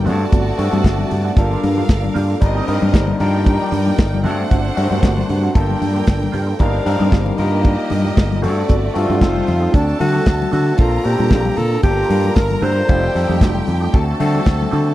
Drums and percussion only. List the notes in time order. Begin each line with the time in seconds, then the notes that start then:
0.06 open hi-hat, low conga
0.32 kick, closed hi-hat, muted conga
0.59 open hi-hat, muted conga
0.73 high conga
0.84 kick, snare, closed hi-hat, muted conga
0.99 high conga
1.11 open hi-hat, muted conga, low conga
1.37 kick, closed hi-hat, muted conga
1.52 high conga
1.63 open hi-hat, muted conga, high conga
1.78 high conga
1.89 kick, snare, closed hi-hat, muted conga
2.04 high conga
2.15 open hi-hat, muted conga, low conga
2.41 kick, closed hi-hat
2.68 open hi-hat, muted conga
2.82 high conga
2.94 kick, snare, closed hi-hat, muted conga
3.07 high conga
3.20 open hi-hat, low conga
3.46 kick, closed hi-hat
3.61 high conga
3.72 open hi-hat, muted conga, high conga
3.87 high conga
3.98 kick, snare, closed hi-hat, muted conga
4.14 high conga
4.24 open hi-hat, low conga
4.51 kick, closed hi-hat
4.77 open hi-hat, muted conga
4.92 high conga
5.03 kick, snare, closed hi-hat, muted conga
5.18 high conga
5.29 open hi-hat, low conga
5.55 kick, closed hi-hat, muted conga
5.70 high conga
5.82 open hi-hat, high conga
5.96 high conga
6.07 kick, snare, closed hi-hat
6.23 high conga
6.34 open hi-hat, muted conga, low conga
6.59 kick, closed hi-hat, muted conga
6.86 open hi-hat, muted conga
7.01 high conga
7.12 kick, snare, closed hi-hat
7.26 high conga
7.38 open hi-hat, muted conga, low conga
7.64 kick, closed hi-hat, muted conga
7.90 open hi-hat, muted conga, high conga
8.05 high conga
8.17 kick, snare, closed hi-hat, muted conga
8.32 high conga
8.42 open hi-hat, muted conga, low conga
8.69 kick, closed hi-hat, muted conga
8.95 open hi-hat, muted conga
9.10 high conga
9.21 kick, snare, closed hi-hat
9.36 high conga
9.47 open hi-hat, muted conga, low conga
9.74 kick, closed hi-hat, muted conga
10.01 open hi-hat, muted conga, high conga
10.15 high conga
10.26 kick, snare, closed hi-hat
10.42 high conga
10.52 open hi-hat, low conga
10.78 kick, closed hi-hat, muted conga
11.04 open hi-hat
11.20 high conga
11.31 kick, snare, closed hi-hat
11.45 high conga
11.56 open hi-hat, muted conga, low conga
11.83 kick, closed hi-hat
12.10 open hi-hat, muted conga, high conga
12.25 high conga
12.36 kick, snare, closed hi-hat, muted conga
12.51 high conga
12.61 open hi-hat, low conga
12.88 kick, closed hi-hat, muted conga
13.16 open hi-hat
13.29 high conga
13.41 kick, snare, closed hi-hat
13.55 high conga
13.67 open hi-hat, muted conga, low conga
13.94 kick, closed hi-hat
14.20 open hi-hat, high conga
14.35 high conga
14.46 kick, snare, closed hi-hat
14.62 high conga
14.72 open hi-hat, low conga